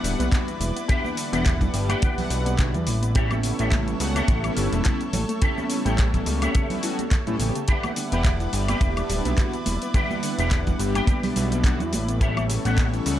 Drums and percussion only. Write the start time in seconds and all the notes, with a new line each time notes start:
0.04 open hi-hat, cabasa
0.20 closed hi-hat, high conga, cabasa
0.32 kick, clap, closed hi-hat, cabasa
0.48 closed hi-hat, cabasa
0.61 open hi-hat, high conga, low conga, cabasa
0.77 closed hi-hat, cabasa
0.89 kick, closed hi-hat, cabasa
1.05 high conga, cabasa
1.17 open hi-hat, cabasa
1.33 closed hi-hat, cabasa
1.45 kick, clap, closed hi-hat, high conga, cabasa
1.61 kick, closed hi-hat, low conga, cabasa
1.74 open hi-hat, cabasa
1.89 closed hi-hat, high conga, cabasa, high woodblock
2.02 kick, closed hi-hat, cabasa
2.18 open hi-hat, low conga, cabasa
2.30 open hi-hat, cabasa
2.46 closed hi-hat, high conga, cabasa
2.59 kick, clap, closed hi-hat, cabasa
2.74 closed hi-hat, low conga, cabasa
2.87 open hi-hat, high conga, cabasa
3.03 closed hi-hat, cabasa
3.15 kick, closed hi-hat, cabasa
3.31 high conga, cabasa, high woodblock
3.43 open hi-hat, cabasa
3.59 closed hi-hat, cabasa
3.72 kick, clap, closed hi-hat, high conga, cabasa
3.88 closed hi-hat, cabasa
4.00 open hi-hat, cabasa
4.16 closed hi-hat, high conga, cabasa, high woodblock
4.28 kick, closed hi-hat, cabasa
4.44 closed hi-hat, cabasa, high woodblock
4.57 open hi-hat, cabasa
4.72 closed hi-hat, high conga, cabasa
4.85 kick, clap, closed hi-hat, cabasa
5.01 closed hi-hat, cabasa
5.13 open hi-hat, high conga, low conga, cabasa
5.29 closed hi-hat, cabasa
5.42 kick, closed hi-hat, cabasa
5.58 high conga, cabasa
5.70 open hi-hat, cabasa
5.86 closed hi-hat, cabasa
5.98 kick, clap, closed hi-hat, high conga, cabasa
6.14 kick, closed hi-hat, low conga, cabasa
6.26 open hi-hat, cabasa
6.42 closed hi-hat, high conga, cabasa, high woodblock
6.55 kick, closed hi-hat, cabasa
6.70 open hi-hat, low conga, cabasa
6.83 open hi-hat, cabasa
6.99 closed hi-hat, high conga, cabasa
7.11 kick, clap, closed hi-hat, cabasa
7.27 closed hi-hat, low conga, cabasa
7.39 open hi-hat, high conga, cabasa
7.55 closed hi-hat, cabasa
7.68 kick, closed hi-hat, cabasa
7.83 high conga, cabasa, high woodblock
7.96 open hi-hat, cabasa
8.12 closed hi-hat, cabasa
8.25 kick, clap, closed hi-hat, high conga, cabasa
8.40 closed hi-hat, cabasa
8.53 open hi-hat, cabasa
8.68 closed hi-hat, high conga, cabasa, high woodblock
8.81 kick, closed hi-hat, cabasa
8.97 closed hi-hat, cabasa, high woodblock
9.10 open hi-hat, cabasa
9.25 closed hi-hat, high conga, cabasa
9.38 kick, clap, closed hi-hat, cabasa
9.53 closed hi-hat, cabasa
9.66 open hi-hat, high conga, low conga, cabasa
9.82 closed hi-hat, cabasa
9.94 kick, closed hi-hat, cabasa
10.11 high conga, cabasa
10.23 open hi-hat, cabasa
10.39 closed hi-hat, cabasa
10.51 kick, clap, closed hi-hat, high conga, cabasa
10.67 kick, closed hi-hat, low conga, cabasa
10.79 open hi-hat, cabasa
10.95 closed hi-hat, high conga, cabasa, high woodblock
11.07 kick, closed hi-hat, cabasa
11.23 open hi-hat, low conga, cabasa
11.36 open hi-hat, cabasa
11.52 closed hi-hat, high conga, cabasa
11.64 kick, clap, closed hi-hat, cabasa
11.80 closed hi-hat, low conga, cabasa
11.93 open hi-hat, high conga, cabasa
12.08 closed hi-hat, cabasa
12.21 kick, closed hi-hat, cabasa
12.37 high conga, cabasa, high woodblock
12.50 open hi-hat, cabasa
12.65 closed hi-hat, cabasa
12.78 kick, clap, closed hi-hat, high conga, cabasa
12.94 closed hi-hat, cabasa
13.06 open hi-hat, cabasa